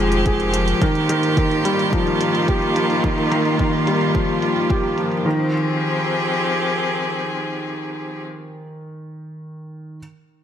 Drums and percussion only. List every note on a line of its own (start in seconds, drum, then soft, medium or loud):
0.12 closed hi-hat soft
0.26 kick loud
0.26 closed hi-hat soft
0.40 closed hi-hat soft
0.54 closed hi-hat medium
0.68 closed hi-hat soft
0.82 kick medium
0.82 closed hi-hat soft
0.95 closed hi-hat soft
1.09 closed hi-hat medium
1.23 closed hi-hat soft
1.37 kick medium
1.37 closed hi-hat soft
1.51 closed hi-hat soft
1.65 closed hi-hat medium
1.79 closed hi-hat soft
1.93 kick loud
1.93 closed hi-hat soft
2.07 closed hi-hat soft
2.21 closed hi-hat medium
2.35 closed hi-hat soft
2.48 kick loud
2.48 closed hi-hat soft
2.62 closed hi-hat soft
2.76 closed hi-hat medium
2.90 closed hi-hat soft
3.04 kick medium
3.04 closed hi-hat soft
3.18 closed hi-hat soft
3.32 closed hi-hat medium
3.45 closed hi-hat soft
3.59 kick medium
3.59 closed hi-hat soft
3.73 closed hi-hat soft
3.87 closed hi-hat medium
4.01 closed hi-hat soft
4.15 kick medium
4.15 closed hi-hat soft
4.29 closed hi-hat soft
4.42 closed hi-hat medium
4.56 closed hi-hat soft
4.70 kick medium
4.70 closed hi-hat soft
4.84 closed hi-hat soft
4.98 closed hi-hat medium
5.12 closed hi-hat soft